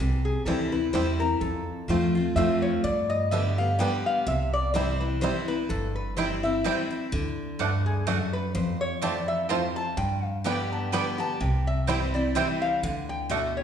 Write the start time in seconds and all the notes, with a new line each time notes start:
0.00 C2 C3 G4
0.25 G#4
0.45 D2 E3 G3 C4 E4 A4
0.72 C4 E4 B4
0.93 E2 E3 G3 C4 E4 C5
1.20 C4 E4 A#4
1.41 F2 A4
1.88 E2 F3 A3 C4 F4
2.15 C4 F4
2.35 F2 F3 A3 C4 F4 E5
2.62 C#5
2.83 G2 D5
3.10 D#5
3.31 D3 G3 B3 D4 G4 E5
3.58 B3 G4 F5
3.79 D3 G3 B3 D4 G4 G5
4.06 F5
4.27 C2 C3 E5
4.53 D5
4.74 E3 G3 C4 E4 C5
5.01 B4
5.21 E3 G3 C4 E4 C5
5.48 C4 E4 B4
5.69 G1 G2 A4
5.96 B4
6.17 E3 G3 C4 E4 C5 G5
6.43 C4 E4 E5
6.64 E3 G3 C4 E4 C5 G5
6.91 C4 E4
7.12 D2 D3
7.59 G2 A3 D4 F#4 D5 F#5
7.86 G#4
8.07 F#2 A3 D4 F#4 A4 D5 F#5
8.33 B4
8.55 F2 C5
8.81 C#5
9.02 E3 A3 C4 F4 C5 D5 A5
9.28 E5
9.49 F2 A3 C4 F4 C5 F5 A5
9.76 A5
9.97 G2 G5
10.24 F5
10.44 D3 G3 B3 D4 G4 D5 G5
10.72 A5
10.92 D3 G3 B3 D4 G4 D5 G5 B5
11.18 B3 G4 A5
11.41 C2 C3 G5
11.67 E5
11.87 E3 G3 C4 E4 C5 G5
12.14 C4 E4 D5
12.35 E3 G3 C4 E4 C5 E5 G5
12.62 F5
12.83 D2 D3 F#5
13.09 G5
13.29 B2 A3 D4 F#4 D5 E5 F#5
13.57 C#5